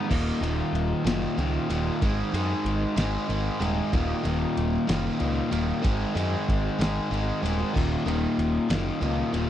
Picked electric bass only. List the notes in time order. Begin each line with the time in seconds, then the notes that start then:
0.11 D#1
0.41 D#1
0.73 D#1
1.05 F#1
1.38 C#2
1.70 D#1
2.02 G#1
2.33 F#2
2.65 G#1
2.96 G#1
3.29 G#1
3.60 D#1
3.93 D#1
4.25 D#1
4.57 D#1
4.89 F#1
5.21 C#2
5.52 D#1
5.85 G#1
6.16 F#2
6.49 G#1
6.79 G#1
7.11 G#1
7.43 D#1
7.76 D#1
8.06 D#1
8.38 D#1
8.70 F#1
9.02 C#2
9.33 D#1